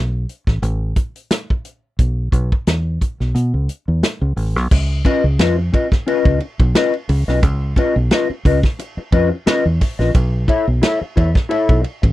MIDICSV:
0, 0, Header, 1, 6, 480
1, 0, Start_track
1, 0, Tempo, 680272
1, 1404, Time_signature, 4, 2, 24, 8
1, 8558, End_track
2, 0, Start_track
2, 0, Title_t, "Clean electric guitar"
2, 0, Program_c, 0, 27
2, 3563, Note_on_c, 0, 61, 92
2, 3566, Note_on_c, 0, 65, 89
2, 3570, Note_on_c, 0, 71, 89
2, 3575, Note_on_c, 0, 75, 102
2, 3679, Note_off_c, 0, 61, 0
2, 3680, Note_off_c, 0, 65, 0
2, 3682, Note_off_c, 0, 71, 0
2, 3685, Note_off_c, 0, 75, 0
2, 3802, Note_on_c, 0, 61, 76
2, 3807, Note_on_c, 0, 65, 93
2, 3812, Note_on_c, 0, 71, 82
2, 3814, Note_on_c, 0, 75, 95
2, 3918, Note_off_c, 0, 61, 0
2, 3920, Note_off_c, 0, 65, 0
2, 3923, Note_off_c, 0, 71, 0
2, 3924, Note_off_c, 0, 75, 0
2, 4039, Note_on_c, 0, 61, 61
2, 4045, Note_on_c, 0, 65, 60
2, 4050, Note_on_c, 0, 71, 63
2, 4052, Note_on_c, 0, 75, 72
2, 4131, Note_off_c, 0, 61, 0
2, 4135, Note_off_c, 0, 65, 0
2, 4137, Note_off_c, 0, 71, 0
2, 4138, Note_off_c, 0, 75, 0
2, 4280, Note_on_c, 0, 61, 92
2, 4285, Note_on_c, 0, 65, 86
2, 4287, Note_on_c, 0, 71, 95
2, 4291, Note_on_c, 0, 75, 88
2, 4505, Note_off_c, 0, 61, 0
2, 4507, Note_off_c, 0, 65, 0
2, 4509, Note_off_c, 0, 71, 0
2, 4511, Note_off_c, 0, 75, 0
2, 4761, Note_on_c, 0, 61, 84
2, 4768, Note_on_c, 0, 65, 80
2, 4770, Note_on_c, 0, 71, 97
2, 4775, Note_on_c, 0, 75, 90
2, 4877, Note_off_c, 0, 61, 0
2, 4880, Note_off_c, 0, 65, 0
2, 4881, Note_off_c, 0, 71, 0
2, 4884, Note_off_c, 0, 75, 0
2, 5137, Note_on_c, 0, 75, 70
2, 5141, Note_on_c, 0, 71, 70
2, 5146, Note_on_c, 0, 65, 62
2, 5150, Note_on_c, 0, 61, 52
2, 5208, Note_off_c, 0, 75, 0
2, 5210, Note_off_c, 0, 71, 0
2, 5212, Note_off_c, 0, 65, 0
2, 5214, Note_off_c, 0, 61, 0
2, 5482, Note_on_c, 0, 61, 98
2, 5486, Note_on_c, 0, 65, 87
2, 5490, Note_on_c, 0, 71, 92
2, 5494, Note_on_c, 0, 75, 97
2, 5597, Note_off_c, 0, 61, 0
2, 5599, Note_off_c, 0, 65, 0
2, 5601, Note_off_c, 0, 71, 0
2, 5603, Note_off_c, 0, 75, 0
2, 5724, Note_on_c, 0, 61, 88
2, 5727, Note_on_c, 0, 65, 84
2, 5734, Note_on_c, 0, 71, 94
2, 5739, Note_on_c, 0, 75, 91
2, 5838, Note_off_c, 0, 61, 0
2, 5839, Note_off_c, 0, 65, 0
2, 5843, Note_off_c, 0, 71, 0
2, 5845, Note_off_c, 0, 75, 0
2, 5963, Note_on_c, 0, 61, 78
2, 5967, Note_on_c, 0, 65, 66
2, 5971, Note_on_c, 0, 71, 78
2, 5976, Note_on_c, 0, 75, 76
2, 6052, Note_off_c, 0, 61, 0
2, 6054, Note_off_c, 0, 65, 0
2, 6056, Note_off_c, 0, 71, 0
2, 6058, Note_off_c, 0, 75, 0
2, 6436, Note_on_c, 0, 61, 86
2, 6442, Note_on_c, 0, 65, 89
2, 6445, Note_on_c, 0, 71, 100
2, 6449, Note_on_c, 0, 75, 101
2, 6553, Note_off_c, 0, 61, 0
2, 6556, Note_off_c, 0, 65, 0
2, 6558, Note_off_c, 0, 71, 0
2, 6559, Note_off_c, 0, 75, 0
2, 6675, Note_on_c, 0, 61, 88
2, 6680, Note_on_c, 0, 65, 101
2, 6684, Note_on_c, 0, 71, 108
2, 6686, Note_on_c, 0, 75, 114
2, 6793, Note_off_c, 0, 61, 0
2, 6795, Note_off_c, 0, 65, 0
2, 6797, Note_off_c, 0, 71, 0
2, 6798, Note_off_c, 0, 75, 0
2, 7048, Note_on_c, 0, 75, 70
2, 7054, Note_on_c, 0, 71, 57
2, 7057, Note_on_c, 0, 65, 59
2, 7062, Note_on_c, 0, 61, 52
2, 7122, Note_off_c, 0, 75, 0
2, 7125, Note_off_c, 0, 71, 0
2, 7127, Note_off_c, 0, 65, 0
2, 7129, Note_off_c, 0, 61, 0
2, 7393, Note_on_c, 0, 64, 86
2, 7398, Note_on_c, 0, 69, 87
2, 7402, Note_on_c, 0, 73, 102
2, 7405, Note_on_c, 0, 76, 109
2, 7511, Note_off_c, 0, 64, 0
2, 7514, Note_off_c, 0, 69, 0
2, 7516, Note_off_c, 0, 73, 0
2, 7518, Note_off_c, 0, 76, 0
2, 7631, Note_on_c, 0, 64, 82
2, 7638, Note_on_c, 0, 69, 90
2, 7642, Note_on_c, 0, 73, 97
2, 7644, Note_on_c, 0, 76, 107
2, 7751, Note_off_c, 0, 64, 0
2, 7754, Note_off_c, 0, 69, 0
2, 7756, Note_off_c, 0, 73, 0
2, 7757, Note_off_c, 0, 76, 0
2, 7873, Note_on_c, 0, 64, 57
2, 7878, Note_on_c, 0, 69, 64
2, 7881, Note_on_c, 0, 73, 66
2, 7887, Note_on_c, 0, 76, 69
2, 7966, Note_off_c, 0, 64, 0
2, 7969, Note_off_c, 0, 69, 0
2, 7970, Note_off_c, 0, 73, 0
2, 7973, Note_off_c, 0, 76, 0
2, 8107, Note_on_c, 0, 64, 96
2, 8114, Note_on_c, 0, 69, 93
2, 8116, Note_on_c, 0, 73, 97
2, 8122, Note_on_c, 0, 76, 99
2, 8337, Note_off_c, 0, 64, 0
2, 8340, Note_off_c, 0, 69, 0
2, 8341, Note_off_c, 0, 73, 0
2, 8344, Note_off_c, 0, 76, 0
2, 8558, End_track
3, 0, Start_track
3, 0, Title_t, "Fingered electric bass"
3, 0, Program_c, 1, 33
3, 0, Note_on_c, 1, 35, 84
3, 173, Note_off_c, 1, 35, 0
3, 333, Note_on_c, 1, 33, 68
3, 428, Note_off_c, 1, 33, 0
3, 438, Note_on_c, 1, 33, 98
3, 654, Note_off_c, 1, 33, 0
3, 1403, Note_on_c, 1, 35, 94
3, 1617, Note_off_c, 1, 35, 0
3, 1639, Note_on_c, 1, 35, 99
3, 1761, Note_off_c, 1, 35, 0
3, 1885, Note_on_c, 1, 40, 86
3, 2099, Note_off_c, 1, 40, 0
3, 2260, Note_on_c, 1, 35, 79
3, 2354, Note_off_c, 1, 35, 0
3, 2362, Note_on_c, 1, 47, 102
3, 2483, Note_off_c, 1, 47, 0
3, 2496, Note_on_c, 1, 37, 77
3, 2592, Note_off_c, 1, 37, 0
3, 2738, Note_on_c, 1, 40, 83
3, 2833, Note_off_c, 1, 40, 0
3, 2974, Note_on_c, 1, 37, 98
3, 3070, Note_off_c, 1, 37, 0
3, 3079, Note_on_c, 1, 33, 89
3, 3216, Note_off_c, 1, 33, 0
3, 3216, Note_on_c, 1, 35, 78
3, 3312, Note_off_c, 1, 35, 0
3, 3325, Note_on_c, 1, 37, 93
3, 3539, Note_off_c, 1, 37, 0
3, 3696, Note_on_c, 1, 37, 95
3, 3792, Note_off_c, 1, 37, 0
3, 3803, Note_on_c, 1, 41, 87
3, 4017, Note_off_c, 1, 41, 0
3, 4411, Note_on_c, 1, 37, 82
3, 4508, Note_off_c, 1, 37, 0
3, 4654, Note_on_c, 1, 35, 105
3, 4750, Note_off_c, 1, 35, 0
3, 5004, Note_on_c, 1, 37, 106
3, 5123, Note_off_c, 1, 37, 0
3, 5135, Note_on_c, 1, 35, 90
3, 5240, Note_off_c, 1, 35, 0
3, 5240, Note_on_c, 1, 37, 109
3, 5455, Note_off_c, 1, 37, 0
3, 5616, Note_on_c, 1, 35, 97
3, 5710, Note_off_c, 1, 35, 0
3, 5962, Note_on_c, 1, 37, 101
3, 6081, Note_off_c, 1, 37, 0
3, 6438, Note_on_c, 1, 41, 106
3, 6559, Note_off_c, 1, 41, 0
3, 6813, Note_on_c, 1, 40, 99
3, 6908, Note_off_c, 1, 40, 0
3, 7048, Note_on_c, 1, 34, 91
3, 7145, Note_off_c, 1, 34, 0
3, 7159, Note_on_c, 1, 35, 108
3, 7373, Note_off_c, 1, 35, 0
3, 7532, Note_on_c, 1, 35, 100
3, 7627, Note_off_c, 1, 35, 0
3, 7882, Note_on_c, 1, 40, 105
3, 8001, Note_off_c, 1, 40, 0
3, 8249, Note_on_c, 1, 35, 101
3, 8345, Note_off_c, 1, 35, 0
3, 8491, Note_on_c, 1, 33, 98
3, 8558, Note_off_c, 1, 33, 0
3, 8558, End_track
4, 0, Start_track
4, 0, Title_t, "Muted clean electric guitar strokes"
4, 3937, Note_on_c, 9, 29, 55
4, 4007, Note_off_c, 9, 29, 0
4, 4175, Note_on_c, 9, 29, 57
4, 4246, Note_off_c, 9, 29, 0
4, 4521, Note_on_c, 9, 29, 41
4, 4591, Note_off_c, 9, 29, 0
4, 4659, Note_on_c, 9, 29, 50
4, 4729, Note_off_c, 9, 29, 0
4, 5001, Note_on_c, 9, 29, 45
4, 5072, Note_off_c, 9, 29, 0
4, 5855, Note_on_c, 9, 29, 57
4, 5926, Note_off_c, 9, 29, 0
4, 6100, Note_on_c, 9, 29, 57
4, 6171, Note_off_c, 9, 29, 0
4, 6200, Note_on_c, 9, 29, 52
4, 6271, Note_off_c, 9, 29, 0
4, 6335, Note_on_c, 9, 29, 47
4, 6406, Note_off_c, 9, 29, 0
4, 6916, Note_on_c, 9, 29, 36
4, 6987, Note_off_c, 9, 29, 0
4, 7769, Note_on_c, 9, 29, 54
4, 7840, Note_off_c, 9, 29, 0
4, 8008, Note_on_c, 9, 29, 49
4, 8079, Note_off_c, 9, 29, 0
4, 8349, Note_on_c, 9, 29, 46
4, 8419, Note_off_c, 9, 29, 0
4, 8482, Note_on_c, 9, 29, 54
4, 8552, Note_off_c, 9, 29, 0
4, 8558, End_track
5, 0, Start_track
5, 0, Title_t, "Muted fingered electric bass strokes"
5, 5853, Note_on_c, 9, 29, 49
5, 5924, Note_off_c, 9, 29, 0
5, 6330, Note_on_c, 9, 29, 51
5, 6401, Note_off_c, 9, 29, 0
5, 6681, Note_on_c, 9, 29, 50
5, 6752, Note_off_c, 9, 29, 0
5, 7770, Note_on_c, 9, 29, 50
5, 7841, Note_off_c, 9, 29, 0
5, 8558, End_track
6, 0, Start_track
6, 0, Title_t, "Drums"
6, 206, Note_on_c, 9, 42, 52
6, 277, Note_off_c, 9, 42, 0
6, 332, Note_on_c, 9, 36, 83
6, 335, Note_on_c, 9, 38, 33
6, 403, Note_off_c, 9, 36, 0
6, 405, Note_off_c, 9, 38, 0
6, 443, Note_on_c, 9, 42, 79
6, 513, Note_off_c, 9, 42, 0
6, 679, Note_on_c, 9, 36, 84
6, 679, Note_on_c, 9, 42, 59
6, 749, Note_off_c, 9, 42, 0
6, 750, Note_off_c, 9, 36, 0
6, 817, Note_on_c, 9, 42, 46
6, 887, Note_off_c, 9, 42, 0
6, 923, Note_on_c, 9, 38, 104
6, 923, Note_on_c, 9, 42, 87
6, 993, Note_off_c, 9, 38, 0
6, 993, Note_off_c, 9, 42, 0
6, 1060, Note_on_c, 9, 36, 90
6, 1131, Note_off_c, 9, 36, 0
6, 1163, Note_on_c, 9, 42, 73
6, 1233, Note_off_c, 9, 42, 0
6, 1404, Note_on_c, 9, 36, 105
6, 1404, Note_on_c, 9, 42, 69
6, 1474, Note_off_c, 9, 36, 0
6, 1475, Note_off_c, 9, 42, 0
6, 1639, Note_on_c, 9, 36, 86
6, 1645, Note_on_c, 9, 42, 66
6, 1710, Note_off_c, 9, 36, 0
6, 1716, Note_off_c, 9, 42, 0
6, 1779, Note_on_c, 9, 36, 86
6, 1850, Note_off_c, 9, 36, 0
6, 1883, Note_on_c, 9, 42, 87
6, 1887, Note_on_c, 9, 38, 108
6, 1954, Note_off_c, 9, 42, 0
6, 1958, Note_off_c, 9, 38, 0
6, 2127, Note_on_c, 9, 36, 72
6, 2128, Note_on_c, 9, 42, 53
6, 2197, Note_off_c, 9, 36, 0
6, 2199, Note_off_c, 9, 42, 0
6, 2260, Note_on_c, 9, 38, 33
6, 2331, Note_off_c, 9, 38, 0
6, 2367, Note_on_c, 9, 42, 73
6, 2438, Note_off_c, 9, 42, 0
6, 2603, Note_on_c, 9, 42, 55
6, 2674, Note_off_c, 9, 42, 0
6, 2846, Note_on_c, 9, 38, 99
6, 2846, Note_on_c, 9, 42, 85
6, 2916, Note_off_c, 9, 38, 0
6, 2916, Note_off_c, 9, 42, 0
6, 3085, Note_on_c, 9, 46, 62
6, 3156, Note_off_c, 9, 46, 0
6, 3219, Note_on_c, 9, 38, 27
6, 3290, Note_off_c, 9, 38, 0
6, 3326, Note_on_c, 9, 36, 123
6, 3327, Note_on_c, 9, 49, 107
6, 3396, Note_off_c, 9, 36, 0
6, 3397, Note_off_c, 9, 49, 0
6, 3561, Note_on_c, 9, 36, 84
6, 3569, Note_on_c, 9, 53, 55
6, 3632, Note_off_c, 9, 36, 0
6, 3639, Note_off_c, 9, 53, 0
6, 3804, Note_on_c, 9, 53, 85
6, 3808, Note_on_c, 9, 38, 107
6, 3875, Note_off_c, 9, 53, 0
6, 3879, Note_off_c, 9, 38, 0
6, 4047, Note_on_c, 9, 36, 87
6, 4050, Note_on_c, 9, 53, 46
6, 4118, Note_off_c, 9, 36, 0
6, 4121, Note_off_c, 9, 53, 0
6, 4175, Note_on_c, 9, 36, 92
6, 4179, Note_on_c, 9, 38, 38
6, 4246, Note_off_c, 9, 36, 0
6, 4250, Note_off_c, 9, 38, 0
6, 4287, Note_on_c, 9, 53, 69
6, 4358, Note_off_c, 9, 53, 0
6, 4413, Note_on_c, 9, 36, 106
6, 4483, Note_off_c, 9, 36, 0
6, 4518, Note_on_c, 9, 53, 51
6, 4589, Note_off_c, 9, 53, 0
6, 4654, Note_on_c, 9, 36, 96
6, 4655, Note_on_c, 9, 53, 44
6, 4724, Note_off_c, 9, 36, 0
6, 4726, Note_off_c, 9, 53, 0
6, 4764, Note_on_c, 9, 38, 127
6, 4764, Note_on_c, 9, 53, 87
6, 4835, Note_off_c, 9, 38, 0
6, 4835, Note_off_c, 9, 53, 0
6, 4894, Note_on_c, 9, 53, 39
6, 4964, Note_off_c, 9, 53, 0
6, 5003, Note_on_c, 9, 46, 73
6, 5003, Note_on_c, 9, 53, 65
6, 5073, Note_off_c, 9, 46, 0
6, 5073, Note_off_c, 9, 53, 0
6, 5136, Note_on_c, 9, 38, 32
6, 5207, Note_off_c, 9, 38, 0
6, 5240, Note_on_c, 9, 53, 70
6, 5241, Note_on_c, 9, 44, 70
6, 5242, Note_on_c, 9, 36, 127
6, 5311, Note_off_c, 9, 53, 0
6, 5312, Note_off_c, 9, 36, 0
6, 5312, Note_off_c, 9, 44, 0
6, 5478, Note_on_c, 9, 36, 85
6, 5485, Note_on_c, 9, 53, 62
6, 5548, Note_off_c, 9, 36, 0
6, 5556, Note_off_c, 9, 53, 0
6, 5721, Note_on_c, 9, 53, 74
6, 5725, Note_on_c, 9, 38, 121
6, 5791, Note_off_c, 9, 53, 0
6, 5795, Note_off_c, 9, 38, 0
6, 5964, Note_on_c, 9, 36, 80
6, 5966, Note_on_c, 9, 46, 43
6, 5966, Note_on_c, 9, 53, 49
6, 6034, Note_off_c, 9, 36, 0
6, 6037, Note_off_c, 9, 46, 0
6, 6037, Note_off_c, 9, 53, 0
6, 6092, Note_on_c, 9, 36, 95
6, 6097, Note_on_c, 9, 38, 35
6, 6163, Note_off_c, 9, 36, 0
6, 6168, Note_off_c, 9, 38, 0
6, 6203, Note_on_c, 9, 44, 67
6, 6205, Note_on_c, 9, 53, 71
6, 6274, Note_off_c, 9, 44, 0
6, 6275, Note_off_c, 9, 53, 0
6, 6437, Note_on_c, 9, 53, 58
6, 6438, Note_on_c, 9, 36, 89
6, 6508, Note_off_c, 9, 53, 0
6, 6509, Note_off_c, 9, 36, 0
6, 6682, Note_on_c, 9, 38, 122
6, 6682, Note_on_c, 9, 53, 85
6, 6752, Note_off_c, 9, 38, 0
6, 6753, Note_off_c, 9, 53, 0
6, 6923, Note_on_c, 9, 46, 77
6, 6923, Note_on_c, 9, 53, 57
6, 6924, Note_on_c, 9, 36, 77
6, 6993, Note_off_c, 9, 46, 0
6, 6993, Note_off_c, 9, 53, 0
6, 6995, Note_off_c, 9, 36, 0
6, 7055, Note_on_c, 9, 38, 33
6, 7126, Note_off_c, 9, 38, 0
6, 7159, Note_on_c, 9, 53, 76
6, 7160, Note_on_c, 9, 36, 125
6, 7160, Note_on_c, 9, 44, 65
6, 7229, Note_off_c, 9, 53, 0
6, 7230, Note_off_c, 9, 44, 0
6, 7231, Note_off_c, 9, 36, 0
6, 7395, Note_on_c, 9, 36, 88
6, 7402, Note_on_c, 9, 53, 51
6, 7466, Note_off_c, 9, 36, 0
6, 7472, Note_off_c, 9, 53, 0
6, 7639, Note_on_c, 9, 53, 83
6, 7643, Note_on_c, 9, 38, 120
6, 7710, Note_off_c, 9, 53, 0
6, 7713, Note_off_c, 9, 38, 0
6, 7882, Note_on_c, 9, 36, 78
6, 7884, Note_on_c, 9, 53, 53
6, 7953, Note_off_c, 9, 36, 0
6, 7955, Note_off_c, 9, 53, 0
6, 8011, Note_on_c, 9, 36, 99
6, 8015, Note_on_c, 9, 38, 40
6, 8081, Note_off_c, 9, 36, 0
6, 8085, Note_off_c, 9, 38, 0
6, 8120, Note_on_c, 9, 53, 66
6, 8191, Note_off_c, 9, 53, 0
6, 8249, Note_on_c, 9, 36, 103
6, 8319, Note_off_c, 9, 36, 0
6, 8356, Note_on_c, 9, 53, 60
6, 8427, Note_off_c, 9, 53, 0
6, 8490, Note_on_c, 9, 36, 99
6, 8494, Note_on_c, 9, 53, 43
6, 8558, Note_off_c, 9, 36, 0
6, 8558, Note_off_c, 9, 53, 0
6, 8558, End_track
0, 0, End_of_file